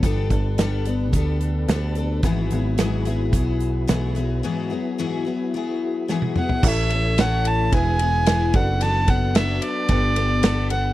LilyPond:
<<
  \new Staff \with { instrumentName = "Fiddle" } { \time 4/4 \key e \mixolydian \tempo 4 = 109 r1 | r1 | r2. r8 fis''8 | e''4 fis''8 a''8 gis''4. fis''8 |
a''8 fis''8 e''8 d''2 fis''8 | }
  \new Staff \with { instrumentName = "Upright piano" } { \time 4/4 \key e \mixolydian r1 | r1 | r1 | <e' a' cis'' e''>2 <e' gis' b' e''>4. <fis' a' b' d''>8~ |
<fis' a' b' d''>2 <g' a' b' d''>2 | }
  \new Staff \with { instrumentName = "Tonewheel organ" } { \time 4/4 \key e \mixolydian <d' g' a' b'>1 | <e' fis' gis' b'>1 | <b e' fis' gis'>1 | <cis' e' a' cis''>2 <b e' gis' b'>4. <d' fis' a' b'>8~ |
<d' fis' a' b'>2 <d' a' b'>2 | }
  \new Staff \with { instrumentName = "Twelve-string acoustic guitar" } { \time 4/4 \key e \mixolydian <g b d' a'>8 <b d' a'>8 <g b d' a'>8 <b d' a'>8 <g b d' a'>4 <g b d' a'>8 <b d' a'>8 | <gis, e fis b e' gis'>8 <fis b e' gis'>8 <gis, e fis b e' gis'>8 <fis b e' gis'>8 <fis b e' gis'>4 <gis, e fis b e' gis'>8 <fis b e' gis'>8 | <gis, e fis b e' gis'>8 <fis b e' gis'>8 <gis, e fis b e' gis'>8 <fis b e' gis'>8 <fis b e' gis'>4 <gis, e fis b e' gis'>8 <fis b e' gis'>8 | <a, a cis' e' a'>8 <cis' e' a'>8 <a, a cis' e' a'>4 <gis b e' gis'>8 <gis b e' gis'>8 <e, e gis b e' gis'>8 <b d' a'>8 |
<fis b d' a'>8 <b d' a'>8 <fis b d' a'>4 <g b d' a'>8 <b d' a'>8 <g b d' a'>8 <b d' a'>8 | }
  \new Staff \with { instrumentName = "Picked electric bass" } { \clef bass \time 4/4 \key e \mixolydian g,,8 g,,4. d,4 d,4 | gis,,8 gis,,4. b,,4 b,,4 | r1 | a,,2 e,,4. fis,,8~ |
fis,,4. r8 g,,2 | }
  \new DrumStaff \with { instrumentName = "Drums" } \drummode { \time 4/4 <hh bd>8 <hh bd>8 <hh sn>8 hh8 <hh bd>8 hh8 <hh sn>8 hh8 | <hh bd>8 hh8 <hh sn>8 hh8 <hh bd>8 hh8 <hh sn>8 hh8 | r4 r4 r4 sn16 tommh16 toml16 tomfh16 | <cymc bd>8 cymr8 <cymr sn>8 cymr8 <bd cymr>8 cymr8 <cymr sn>8 <bd cymr>8 |
cymr8 <bd cymr>8 <cymr sn>8 cymr8 <bd cymr>8 cymr8 <cymr sn>8 cymr8 | }
>>